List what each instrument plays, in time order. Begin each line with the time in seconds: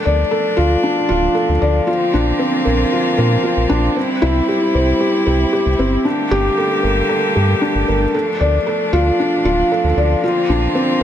Already playing: string quartet F3 A3 D4
0.05 analog synth bass D2, felt piano D5
0.31 felt piano A4
0.57 analog synth bass D2, felt piano F4
0.84 felt piano D4
1.09 analog synth bass D1, felt piano F4
1.35 felt piano A4
1.49 analog synth bass D2
1.62 analog synth bass D2, felt piano D5
1.87 string quartet D3 A#3 C4 F4, felt piano F4
2.14 analog synth bass A#1, felt piano D4
2.39 felt piano C4
2.65 analog synth bass A#1, felt piano A#4
2.92 felt piano F4
3.18 analog synth bass A#2, felt piano A#4
3.43 felt piano F4
3.57 analog synth bass A#1
3.70 analog synth bass A#1, felt piano D4
3.96 string quartet G3 E4, felt piano C4
4.22 analog synth bass C2, felt piano E4
4.49 felt piano G4
4.75 analog synth bass C2, felt piano C5
5.00 felt piano G4
5.27 analog synth bass C2, felt piano G4
5.53 felt piano G4
5.66 analog synth bass C2
5.79 analog synth bass G1, felt piano C4
6.05 string quartet D3 G3 A3 A#3 G4, felt piano D4
6.31 analog synth bass G1, felt piano G4
6.58 felt piano A4
6.83 analog synth bass G1, felt piano A#4
7.09 felt piano A4
7.36 analog synth bass G2, felt piano G4
7.62 felt piano D4
7.75 analog synth bass G1
7.88 analog synth bass G1, felt piano A#4
8.14 string quartet F3 D4, felt piano A4
8.40 analog synth bass D2, felt piano D5
8.67 felt piano A4
8.93 analog synth bass D2, felt piano F4
9.20 felt piano D4
9.45 analog synth bass D1, felt piano F4
9.72 felt piano A4
9.84 analog synth bass D2
9.97 analog synth bass D2, felt piano D5
10.23 string quartet D3 A#3 C4 F4, felt piano F4
10.49 analog synth bass A#1, felt piano D4
10.75 felt piano C4